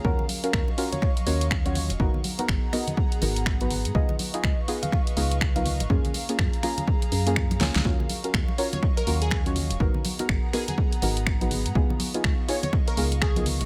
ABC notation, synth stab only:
X:1
M:4/4
L:1/16
Q:"Swing 16ths" 1/4=123
K:Ebm
V:1 name="Synth stab"
[DFGB]3 [DFGB] z2 [DFGB] z3 [DFGB]3 [DFGd]2 z | [CEGB]3 [CEGB] z2 [CEGB] z3 [CEGB]3 [CEGc]2 z | [CEFA]3 [CEFA] z2 [CEFA] z3 [CEFA]3 [CEFB]2 z | [B,DFA]3 [B,DFA] z2 [B,DFA] z4 [B,DFA]3 [B,DFA]2 |
[DFGB]3 [DFGB] z2 [DFGB] z3 [DFGB]3 [DFGd]2 z | [CEGB]3 [CEGB] z2 [CEGB] z3 [CEGB]3 [CEGc]2 z | [CEFA]3 [CEFA] z2 [CEFA] z3 [CEFA]3 [CEFB]2 z |]